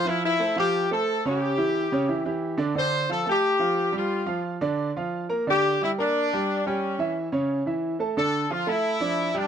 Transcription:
X:1
M:4/4
L:1/8
Q:1/4=178
K:Dm
V:1 name="Grand piano"
[^E,^E^e]2 [A,A^B] [E,Ee]2 [A,AB]2 [^C,^C^c]- | [^C,^C^c] [E,EG]2 [C,Cc] [E,EG] [E,EG]2 [D,Dd] | [D,Dd]2 [F,Ff] [A,Aa]2 [F,Ff]2 [G,Gg]- | [G,Gg] [F,Ff]2 [D,Dd]2 [F,Ff]2 [B,Bb] |
[D,Dd]2 [G,Gg] [B,Bb]2 [G,Gg]2 [G,Gg]- | [G,Gg] [E,Ee]2 [^C,^C^c]2 [E,Ee]2 [A,Aa] | [D,Dd]2 [F,Ff] [A,Aa]2 [F,Dd]2 [G,Gg] |]
V:2 name="Horn section"
E E2 G2 A2 G- | G6 z2 | c2 A G4 F- | F2 z6 |
G2 E D4 ^C- | ^C2 z6 | A2 F E4 D |]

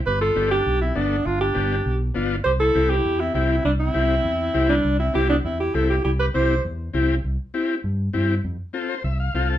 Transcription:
X:1
M:4/4
L:1/8
Q:1/4=200
K:C
V:1 name="Alto saxophone"
B A2 G2 E D2 | F G4 z3 | c A2 G2 E E2 | D E6 D- |
D E G D E G A G | G B c2 z4 | z8 | z8 |]
V:2 name="Transistor combo organ"
z2 [B,DG] z3 [B,DA] z | z2 [B,DG] z3 [B,DF] z | z2 [CEG] z3 [CEG] z | z2 [CEG] z3 [CEG] z |
z2 [CEG] z3 [CEG] z | z2 [CEG] z3 [CEG] z | z2 [CEG] z3 [CEG] z | z2 [CFA] c e f [CFAf] a |]
V:3 name="Clarinet"
G F2 D2 C B,2 | D D4 z3 | G E2 E2 C C2 | G, C6 G,- |
G, C E B, C E E E | E G G2 z4 | z8 | z8 |]
V:4 name="Fingered electric bass" clef=bass
G,,,2 G,,,2 B,,,2 G,,,2 | G,,,2 G,,,2 B,,,2 G,,,2 | C,,2 C,,2 E,,2 C,,2 | C,,2 C,,2 E,,2 C,,2 |
C,,2 C,,2 E,,2 C,,2 | C,,2 C,,2 E,,2 C,,2 | C,, z3 G,,2 G,,2 | F,, z3 C,,2 C,,2 |]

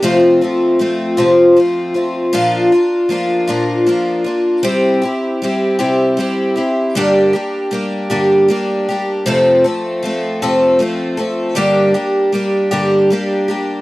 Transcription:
X:1
M:6/8
L:1/8
Q:3/8=52
K:Gdor
V:1 name="Twelve-string acoustic guitar"
[F,,C,F,A,CF] [F,A,CF] [F,A,CF] [F,,C,F,A,CF] [F,A,CF] [F,A,CF] | [B,,F,B,DF] [B,DF] [F,B,DF] [B,,F,B,DF] [F,B,DF] [B,DF] | [C,G,CEG] [CEG] [G,CEG] [C,G,CEG] [G,CEG] [CEG] | [G,,D,G,B,DG] [G,B,DG] [G,B,DG] [G,,D,G,B,DG] [G,B,DG] [G,B,DG] |
[F,,C,F,A,CA] [F,A,CA] [F,A,CA] [F,,C,F,A,CA] [F,A,CA] [F,A,CA] | [G,,D,G,B,DG] [G,B,DG] [G,B,DG] [G,,D,G,B,DG] [G,B,DG] [G,B,DG] |]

